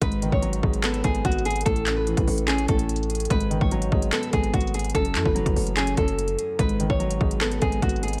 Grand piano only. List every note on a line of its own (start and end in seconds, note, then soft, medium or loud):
0.02 1.03 G#2 loud
0.22 1.25 D#3 medium
0.42 1.45 F#3 medium
0.64 1.66 G#3 medium
0.84 1.66 B3 loud
1.04 1.66 G#2 medium
1.66 2.68 A2 medium
1.86 2.89 C#3 medium
2.07 3.10 E3 medium
2.28 3.30 A3 medium
2.49 3.31 C#4 medium
2.69 3.31 A2 medium
3.31 4.31 G#2 medium
3.50 4.53 D#3 medium
3.72 4.74 F#3 medium
3.92 4.95 G#3 medium
4.12 4.95 B3 loud
4.33 4.95 G#2 medium
4.94 5.96 F#2 loud
5.16 6.18 E3 medium
5.35 6.38 F#3 medium
5.56 6.59 A3 medium
5.77 6.59 C#4 medium
5.98 6.59 F#2 medium
6.59 7.60 G#2 medium
6.80 7.82 D#3 medium
7.00 8.03 F#3 medium
7.21 8.20 G#3 medium
7.41 8.20 B3 loud
7.62 8.20 G#2 medium